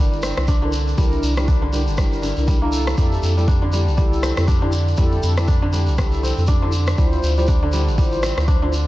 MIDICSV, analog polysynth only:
0, 0, Header, 1, 2, 480
1, 0, Start_track
1, 0, Tempo, 500000
1, 939, Time_signature, 4, 2, 24, 8
1, 8517, End_track
2, 0, Start_track
2, 0, Title_t, "Analog polysynth"
2, 0, Program_c, 0, 90
2, 0, Note_on_c, 0, 62, 77
2, 0, Note_on_c, 0, 64, 68
2, 0, Note_on_c, 0, 70, 83
2, 326, Note_off_c, 0, 62, 0
2, 326, Note_off_c, 0, 64, 0
2, 326, Note_off_c, 0, 70, 0
2, 359, Note_on_c, 0, 64, 70
2, 359, Note_on_c, 0, 70, 85
2, 360, Note_on_c, 0, 62, 75
2, 418, Note_off_c, 0, 64, 0
2, 418, Note_off_c, 0, 70, 0
2, 419, Note_off_c, 0, 62, 0
2, 598, Note_on_c, 0, 62, 86
2, 598, Note_on_c, 0, 64, 81
2, 598, Note_on_c, 0, 70, 96
2, 693, Note_off_c, 0, 62, 0
2, 693, Note_off_c, 0, 64, 0
2, 693, Note_off_c, 0, 70, 0
2, 940, Note_on_c, 0, 70, 100
2, 942, Note_on_c, 0, 62, 92
2, 942, Note_on_c, 0, 64, 84
2, 1285, Note_off_c, 0, 70, 0
2, 1286, Note_off_c, 0, 62, 0
2, 1286, Note_off_c, 0, 64, 0
2, 1319, Note_on_c, 0, 62, 81
2, 1320, Note_on_c, 0, 64, 75
2, 1320, Note_on_c, 0, 70, 86
2, 1414, Note_off_c, 0, 62, 0
2, 1414, Note_off_c, 0, 64, 0
2, 1414, Note_off_c, 0, 70, 0
2, 1660, Note_on_c, 0, 62, 71
2, 1660, Note_on_c, 0, 64, 68
2, 1660, Note_on_c, 0, 70, 81
2, 1741, Note_off_c, 0, 62, 0
2, 1741, Note_off_c, 0, 64, 0
2, 1741, Note_off_c, 0, 70, 0
2, 1899, Note_on_c, 0, 64, 68
2, 1899, Note_on_c, 0, 70, 83
2, 1901, Note_on_c, 0, 62, 78
2, 2244, Note_off_c, 0, 64, 0
2, 2245, Note_off_c, 0, 62, 0
2, 2245, Note_off_c, 0, 70, 0
2, 2277, Note_on_c, 0, 64, 66
2, 2277, Note_on_c, 0, 70, 81
2, 2278, Note_on_c, 0, 62, 71
2, 2484, Note_off_c, 0, 62, 0
2, 2484, Note_off_c, 0, 64, 0
2, 2484, Note_off_c, 0, 70, 0
2, 2515, Note_on_c, 0, 64, 80
2, 2516, Note_on_c, 0, 69, 97
2, 2517, Note_on_c, 0, 62, 94
2, 2834, Note_off_c, 0, 62, 0
2, 2834, Note_off_c, 0, 64, 0
2, 2834, Note_off_c, 0, 69, 0
2, 2857, Note_on_c, 0, 64, 90
2, 2857, Note_on_c, 0, 67, 84
2, 2857, Note_on_c, 0, 69, 101
2, 3203, Note_off_c, 0, 64, 0
2, 3203, Note_off_c, 0, 67, 0
2, 3203, Note_off_c, 0, 69, 0
2, 3237, Note_on_c, 0, 67, 74
2, 3237, Note_on_c, 0, 69, 86
2, 3238, Note_on_c, 0, 64, 81
2, 3333, Note_off_c, 0, 64, 0
2, 3333, Note_off_c, 0, 67, 0
2, 3333, Note_off_c, 0, 69, 0
2, 3577, Note_on_c, 0, 69, 79
2, 3578, Note_on_c, 0, 64, 73
2, 3578, Note_on_c, 0, 67, 66
2, 3660, Note_off_c, 0, 64, 0
2, 3660, Note_off_c, 0, 67, 0
2, 3660, Note_off_c, 0, 69, 0
2, 3816, Note_on_c, 0, 64, 73
2, 3817, Note_on_c, 0, 67, 70
2, 3817, Note_on_c, 0, 69, 84
2, 4163, Note_off_c, 0, 64, 0
2, 4163, Note_off_c, 0, 67, 0
2, 4163, Note_off_c, 0, 69, 0
2, 4196, Note_on_c, 0, 64, 75
2, 4197, Note_on_c, 0, 67, 70
2, 4197, Note_on_c, 0, 69, 84
2, 4257, Note_off_c, 0, 64, 0
2, 4257, Note_off_c, 0, 67, 0
2, 4257, Note_off_c, 0, 69, 0
2, 4437, Note_on_c, 0, 69, 93
2, 4438, Note_on_c, 0, 67, 83
2, 4439, Note_on_c, 0, 64, 88
2, 4533, Note_off_c, 0, 67, 0
2, 4533, Note_off_c, 0, 69, 0
2, 4534, Note_off_c, 0, 64, 0
2, 4782, Note_on_c, 0, 69, 104
2, 4783, Note_on_c, 0, 64, 92
2, 4783, Note_on_c, 0, 67, 81
2, 5126, Note_off_c, 0, 64, 0
2, 5126, Note_off_c, 0, 67, 0
2, 5126, Note_off_c, 0, 69, 0
2, 5157, Note_on_c, 0, 64, 83
2, 5158, Note_on_c, 0, 67, 75
2, 5158, Note_on_c, 0, 69, 89
2, 5253, Note_off_c, 0, 64, 0
2, 5253, Note_off_c, 0, 67, 0
2, 5253, Note_off_c, 0, 69, 0
2, 5501, Note_on_c, 0, 67, 68
2, 5502, Note_on_c, 0, 64, 75
2, 5502, Note_on_c, 0, 69, 79
2, 5582, Note_off_c, 0, 64, 0
2, 5582, Note_off_c, 0, 67, 0
2, 5582, Note_off_c, 0, 69, 0
2, 5742, Note_on_c, 0, 69, 86
2, 5743, Note_on_c, 0, 64, 75
2, 5743, Note_on_c, 0, 67, 70
2, 6086, Note_off_c, 0, 64, 0
2, 6086, Note_off_c, 0, 67, 0
2, 6086, Note_off_c, 0, 69, 0
2, 6120, Note_on_c, 0, 69, 85
2, 6121, Note_on_c, 0, 64, 77
2, 6121, Note_on_c, 0, 67, 72
2, 6179, Note_off_c, 0, 64, 0
2, 6179, Note_off_c, 0, 67, 0
2, 6179, Note_off_c, 0, 69, 0
2, 6361, Note_on_c, 0, 67, 83
2, 6362, Note_on_c, 0, 69, 98
2, 6363, Note_on_c, 0, 64, 86
2, 6455, Note_off_c, 0, 67, 0
2, 6455, Note_off_c, 0, 69, 0
2, 6456, Note_off_c, 0, 64, 0
2, 6701, Note_on_c, 0, 64, 90
2, 6701, Note_on_c, 0, 65, 83
2, 6701, Note_on_c, 0, 72, 99
2, 7045, Note_off_c, 0, 64, 0
2, 7045, Note_off_c, 0, 65, 0
2, 7046, Note_off_c, 0, 72, 0
2, 7080, Note_on_c, 0, 64, 81
2, 7080, Note_on_c, 0, 65, 74
2, 7081, Note_on_c, 0, 72, 89
2, 7174, Note_off_c, 0, 64, 0
2, 7174, Note_off_c, 0, 65, 0
2, 7175, Note_off_c, 0, 72, 0
2, 7421, Note_on_c, 0, 64, 73
2, 7422, Note_on_c, 0, 72, 78
2, 7423, Note_on_c, 0, 65, 68
2, 7502, Note_off_c, 0, 64, 0
2, 7502, Note_off_c, 0, 72, 0
2, 7503, Note_off_c, 0, 65, 0
2, 7658, Note_on_c, 0, 65, 70
2, 7660, Note_on_c, 0, 64, 75
2, 7660, Note_on_c, 0, 72, 83
2, 8004, Note_off_c, 0, 65, 0
2, 8005, Note_off_c, 0, 64, 0
2, 8005, Note_off_c, 0, 72, 0
2, 8039, Note_on_c, 0, 72, 84
2, 8040, Note_on_c, 0, 64, 78
2, 8040, Note_on_c, 0, 65, 70
2, 8098, Note_off_c, 0, 64, 0
2, 8098, Note_off_c, 0, 65, 0
2, 8098, Note_off_c, 0, 72, 0
2, 8281, Note_on_c, 0, 64, 90
2, 8281, Note_on_c, 0, 65, 79
2, 8282, Note_on_c, 0, 72, 100
2, 8375, Note_off_c, 0, 64, 0
2, 8375, Note_off_c, 0, 65, 0
2, 8375, Note_off_c, 0, 72, 0
2, 8517, End_track
0, 0, End_of_file